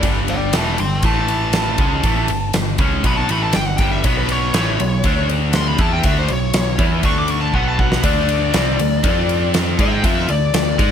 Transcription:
0.03 G1 G2 D3 G3, kick, ride
0.28 D5 G5, ride
0.53 E1 E2 B2 E3 E5 A5, snare, ride
0.78 G1 G2 D3 G5 C6, ride
1.02 A1 A2 E3 A3 A5, kick, ride
1.28 ride
1.53 snare, ride
1.78 C#2 C#3 G#3 C#4, kick, ride
2.03 A1 A2 E3 A3, kick, ride
2.28 G1 G2 D3, ride
2.53 G1 G2 D3, snare, ride
2.78 C#2 C#3 G#3 C#4, kick, ride
3.04 B1 B2 F#3 B3 B5, kick, ride
3.16 A5
3.29 A1 A2 E3 A3 B5, ride
3.43 A5
3.53 G1 G2 D3 G5, snare, ride
3.66 F#5
3.77 G1 G2 D3 G5, kick, ride
3.81 G3
3.92 E5
4.04 B1 B2 F#3 B3 C#5, kick, ride
4.17 B4
4.29 C#5, ride
4.54 A1 A2 E3 A3, snare, ride
4.80 B1 B2 F#3, ride
5.04 D2 D3 A3 D4, kick, ride
5.29 ride
5.53 C6, snare, ride
5.67 B5
5.78 E2 E3 B3 E4 A5, kick, ride
5.93 G5
6.03 D2 D3 A3 D4 E5, kick, ride
6.19 C5
6.28 B1 B2 F#3, ride
6.33 C#5
6.53 B1 B2 F#3, snare, ride
6.78 E2 E3 B3 E4, kick, ride
7.03 D2 D3 A3 D4 C#6, kick, ride
7.19 D6
7.28 C#6, ride
7.41 A5
7.53 B1 B2 F#3 B3 F#5, kick
7.68 A5
7.79 F#5, kick
7.92 snare
8.03 D2 D3 A3 D4 D5, kick, ride
8.29 ride
8.54 C2 C3 G3 C4, snare, ride
8.79 D2 D3 A3, ride
9.04 F2 F3 C4 F4, kick, ride
9.29 ride
9.54 snare, ride
9.79 G#2 G#3 D#4 G#4 E5, kick, ride
9.91 G5
10.03 F2 F3 C4 F4 E5, kick, ride
10.28 D2 D3 A3 D5, ride
10.54 D2 D3 A3, snare, ride
10.79 G#2 G#3 D#4 G#4, kick, ride

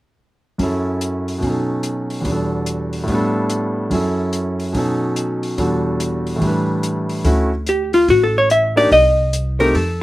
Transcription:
0.58 F#2 F#3 C#4 E4, kick, open hi-hat
0.63 A4
1.01 closed hi-hat
1.28 open hi-hat
1.38 B2 F#3
1.42 C#4, kick, open hi-hat
1.47 D#4 A4
1.83 closed hi-hat
2.10 open hi-hat
2.21 E2 B2, open hi-hat
2.25 G3 D4, kick
2.30 F#4 A4
2.66 closed hi-hat
2.93 open hi-hat
3.04 A2 G3
3.08 B3, kick, open hi-hat
3.12 D4 A4
3.50 closed hi-hat
3.90 F#2 F#3 C#4 E4, kick, open hi-hat
3.95 A4
4.33 closed hi-hat
4.60 open hi-hat
4.73 B2 F#3 C#4 D#4, kick, open hi-hat
4.78 A4
5.16 closed hi-hat
5.43 open hi-hat
5.58 E2 B2 G3 D4 F#4 A4, kick, open hi-hat
6.00 closed hi-hat
6.27 open hi-hat
6.36 A2 E3
6.42 G3 D4, kick, open hi-hat
6.47 B4
6.83 closed hi-hat
7.09 open hi-hat
7.24 D2 A3 C#4 E4 F#4, kick, open hi-hat
7.67 G4, closed hi-hat
7.93 F4, open hi-hat
8.08 A1 F#4, kick, open hi-hat
8.23 A4
8.38 C#5
8.50 E5, closed hi-hat
8.76 A#3 D4 D#4 G4 D5, open hi-hat
8.92 C2 D#5, kick, open hi-hat
9.33 closed hi-hat
9.59 A3 C4 D#4 G4 A#4, open hi-hat
9.74 F2 A4, kick, open hi-hat

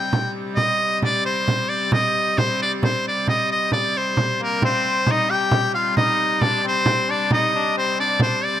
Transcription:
Already playing: C3 G3 G5
0.13 frame drum
0.55 D#5, frame drum
0.79 frame drum
1.02 D5, frame drum
1.25 C5
1.48 frame drum
1.69 D5
1.92 D#5, frame drum
2.16 frame drum
2.38 C5, frame drum
2.62 D5
2.83 C5, frame drum
3.08 D5
3.27 D#5, frame drum
3.51 D#5
3.72 D5, frame drum
3.97 C5
4.17 frame drum
4.40 A#3 A#4, frame drum
4.62 C3 G3 C4 C5, frame drum
4.85 frame drum
5.07 D#4, frame drum
5.11 D#5
5.30 G4 G5
5.51 frame drum
5.74 F4 F5
5.96 D#4 D#5, frame drum
6.19 frame drum
6.41 D4 D5, frame drum
6.64 C4 C5
6.86 frame drum
7.09 D4 D5
7.31 D#4 D#5, frame drum
7.54 D4, frame drum
7.78 C4 C5
8.00 D4 D5
8.20 C5, frame drum
8.44 D5

